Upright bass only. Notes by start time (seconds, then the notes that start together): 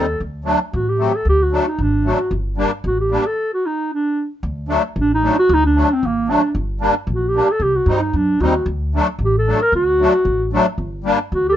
Already playing: D#2
0.20 D2
0.73 A1
1.25 D2
1.78 G#1
2.31 G1
2.84 A1
4.43 D2
4.96 A1
5.49 D2
6.03 G#1
6.55 G1
7.07 A#1
7.60 C2
7.86 G2
8.13 F#2
8.40 D#2
8.66 D2
9.19 A1
9.72 D2
10.25 A1
10.78 G1
11.32 D2